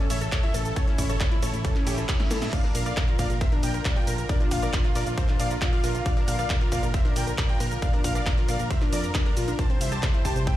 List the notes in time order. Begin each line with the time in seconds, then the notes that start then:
Already playing: C#3 E3 A3 E4 A4
0.10 A1 C#5 E5, open hi-hat, ride, shaker
0.21 A4, closed hi-hat, shaker
0.32 A4 C#5, kick, clap, closed hi-hat, ride, shaker
0.43 E4 C#5 E5, closed hi-hat
0.54 A1 A4, open hi-hat, ride, shaker
0.65 A4, closed hi-hat, shaker
0.76 C#4 A4 C#5, kick, closed hi-hat, ride, shaker
0.87 C#4 E4, closed hi-hat
0.98 A1 E4 C#5, kick, open hi-hat, ride, shaker
1.09 A4 C#5, closed hi-hat, shaker
1.20 E4 C#5, kick, clap, closed hi-hat, ride, shaker
1.31 E4, closed hi-hat
1.43 A1 A4 C#5, open hi-hat, ride, shaker
1.54 A1 E4, closed hi-hat, shaker
1.64 C#4 A4 A5, kick, closed hi-hat, ride, reverse cymbal, shaker
1.76 C#4 E4, clap, closed hi-hat
1.87 A1 E4 G4 C#5, open hi-hat, ride, shaker
1.98 E4 A4, closed hi-hat, shaker
2.09 E4 C#5, kick, clap, closed hi-hat, ride, shaker
2.20 C#4 E4, snare, closed hi-hat
2.31 A2 E4 A4, snare, open hi-hat, ride, shaker
2.42 E4, snare, closed hi-hat, shaker
2.53 D3 F3 A#3 D4 F4 A#4 D5 F5, kick, closed hi-hat, crash, ride, shaker
2.64 D4 A#4, closed hi-hat
2.75 A#1 A#4 F5, open hi-hat, ride, shaker
2.86 A#4 D5 F5, closed hi-hat, shaker
2.97 A#4 D5, kick, clap, closed hi-hat, ride, shaker
3.08 F4 A#4, closed hi-hat
3.19 A#1 A#4 D5 F5, kick, open hi-hat, ride, shaker
3.30 A#1 A#4, closed hi-hat, shaker
3.41 C5 E5 A#5, kick, closed hi-hat, ride, shaker
3.52 D4 A#4, closed hi-hat
3.63 A#1 A#4 D5 G5, open hi-hat, ride, shaker
3.74 A#4, closed hi-hat, shaker
3.85 A#4 D5, kick, clap, closed hi-hat, ride, shaker
3.96 F4 A#4 G5, closed hi-hat
4.07 A#1 A#4, open hi-hat, ride, shaker
4.18 A#4, closed hi-hat, shaker
4.29 D4 A#4 D5, kick, closed hi-hat, ride, shaker
4.40 D4 F4, closed hi-hat
4.51 A#1 F4 F5, kick, open hi-hat, ride, shaker
4.62 A#4 D5, closed hi-hat, shaker
4.73 F4 D5, kick, clap, closed hi-hat, ride, shaker
4.84 F4, closed hi-hat
4.95 A#1 A#4 D5, open hi-hat, ride, shaker
5.06 A#1 F4, closed hi-hat, shaker
5.17 A4 C5 A#5, kick, closed hi-hat, ride, shaker
5.28 D4 F4, clap, closed hi-hat
5.39 A#1 D5 F5, open hi-hat, ride, shaker
5.51 F4 A#4, closed hi-hat, shaker
5.62 F4 D5, kick, clap, closed hi-hat, ride, shaker
5.73 F4 D5 F5, closed hi-hat
5.84 A#1 F4 A#4, open hi-hat, ride, shaker
5.95 F4, closed hi-hat, shaker
6.06 D4 D5 F5, kick, closed hi-hat, ride, shaker
6.17 D4 A#4, closed hi-hat
6.28 A#1 A#4 F5, open hi-hat, ride, shaker
6.39 A#4 D5 F5, closed hi-hat, shaker
6.50 A#4 D5, kick, clap, closed hi-hat, ride, shaker
6.61 F4 A#4, closed hi-hat
6.72 A#1 A#4 D5 F5, kick, open hi-hat, ride, shaker
6.83 A#1 A#4, closed hi-hat, shaker
6.94 C5 E5 A#5, kick, closed hi-hat, ride, shaker
7.05 D4 A#4, closed hi-hat
7.16 A#1 A#4 D5 G5, open hi-hat, ride, shaker
7.27 A#4, closed hi-hat, shaker
7.38 A#4 D5, kick, clap, closed hi-hat, ride, shaker
7.49 F4 A#4 G5, closed hi-hat
7.60 A#1 A#4, open hi-hat, ride, shaker
7.71 A#4, closed hi-hat, shaker
7.82 D4 D5 F5, kick, closed hi-hat, ride, shaker
7.93 D4 A#4, closed hi-hat
8.04 A#1 A#4 F5, kick, open hi-hat, ride, shaker
8.15 A#4 D5 F5, closed hi-hat, shaker
8.26 A#4 D5, kick, clap, closed hi-hat, ride, shaker
8.37 F4 A#4, closed hi-hat
8.48 A#1 A#4 D5 F5, open hi-hat, ride, shaker
8.59 A#1 A#4, closed hi-hat, shaker
8.71 C5 E5 A#5, kick, closed hi-hat, ride, shaker
8.82 D4 A#4, clap, closed hi-hat
8.93 F2 A#4 D5 D6, open hi-hat, ride, shaker
9.04 A#4 A#5, closed hi-hat, shaker
9.15 D4 A#4, kick, clap, closed hi-hat, ride, shaker
9.26 D4 A#4 A#5, closed hi-hat
9.37 A#1 F4 A#4, open hi-hat, ride, shaker
9.48 D4 A#4, closed hi-hat, shaker
9.59 C3 E3 G3 C4 E4 G4 C5 A5, kick, closed hi-hat, ride, shaker
9.70 C4 C5, closed hi-hat
9.81 C2 C5 E5, open hi-hat, ride, shaker
9.92 G4 C5 A5, closed hi-hat, shaker
10.03 C5, kick, clap, closed hi-hat, ride, shaker
10.14 E4 C5, closed hi-hat
10.25 C2 G4 C5 A5, kick, open hi-hat, ride, shaker
10.36 C2 C5, closed hi-hat, shaker
10.47 E5 G5, kick, closed hi-hat, ride, shaker